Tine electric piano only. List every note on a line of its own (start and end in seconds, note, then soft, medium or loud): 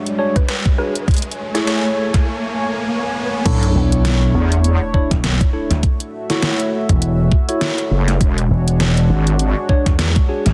0.19 0.42 D4 medium
0.19 0.42 F#4 medium
0.19 0.42 G#4 medium
0.19 0.42 C#5 medium
0.78 0.94 D4 medium
0.78 0.94 F#4 medium
0.78 0.94 G#4 medium
0.78 0.94 C#5 medium
1.55 2.27 E4 medium
1.55 2.27 G#4 medium
1.55 2.27 A4 medium
1.55 2.27 C#5 loud
3.45 4.35 D4 loud
3.45 4.35 E4 medium
3.45 4.35 A4 medium
3.45 4.35 C#5 loud
4.94 5.17 D4 medium
4.94 5.17 E4 medium
4.94 5.17 A4 medium
4.94 5.17 C#5 medium
5.53 5.69 D4 medium
5.53 5.69 E4 medium
5.53 5.69 A4 medium
5.53 5.69 C#5 medium
6.30 7.29 E4 medium
6.30 7.29 F#4 medium
6.30 7.29 A4 medium
6.30 7.29 C#5 loud
7.49 8.19 E4 medium
7.49 8.19 F#4 medium
7.49 8.19 A4 medium
7.49 8.19 C#5 loud
9.69 9.92 D4 medium
9.69 9.92 F#4 medium
9.69 9.92 G#4 medium
9.69 9.92 C#5 loud
10.29 10.45 D4 medium
10.29 10.45 F#4 medium
10.29 10.45 G#4 medium
10.29 10.45 C#5 medium